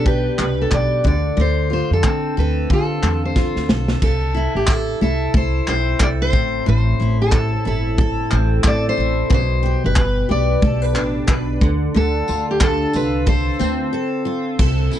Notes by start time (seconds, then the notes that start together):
Already playing: B1 B2 D4 B4
0.05 G4 B4, kick
0.38 C2 B4, clap
0.62 A4
0.71 B1 G4 D5, kick, clap
1.04 D2 D3 D5, kick
1.37 D2 D3
1.41 C5
1.70 F4 C5
1.91 F2 A4
2.03 D3 C4, kick, clap
2.37 D2 A4 B4
2.70 D3 F4 A4, kick
3.03 E2 A4, clap
3.25 C5
3.36 F4, kick, snare
3.56 D2, snare
3.69 B1 A4, snare
3.88 snare
4.02 C2 A4, kick, crash
4.34 E4
4.55 A1 G4
4.67 A4, kick, clap
5.01 C2 E4 A4
5.34 C2 A4 C5, kick
5.67 B1 C4 C5, clap
6.00 C2 A4 D5, kick, clap
6.22 C5
6.33 A1 A2, kick
6.66 A1 A2 C5
7.00 A1 E4
7.22 A4
7.32 A4, kick, clap
7.65 G1 E4 A4
7.98 A4, kick
8.31 A1 C4, clap
8.63 A1 A4, kick, clap
8.67 D5
8.89 C5
8.97 A1 E4
9.30 B1 B2, kick
9.34 C5
9.63 G4
9.84 G1 B4
9.96 B4, kick, clap
10.29 B1 G4 D5
10.62 B1 A4, kick
10.82 B4
10.95 A1 D4, clap
11.27 B1 B4, kick, clap
11.61 D2 D3, kick
11.94 D2 D3 A4
12.28 D2 F4, tambourine
12.51 G4
12.60 A4, kick, clap
12.93 C2 F4 B4, tambourine
13.26 A4 C5, kick
13.59 D2 C4, tambourine
13.93 A4
14.25 F4
14.59 C2 A4, kick, crash
14.91 E4, tambourine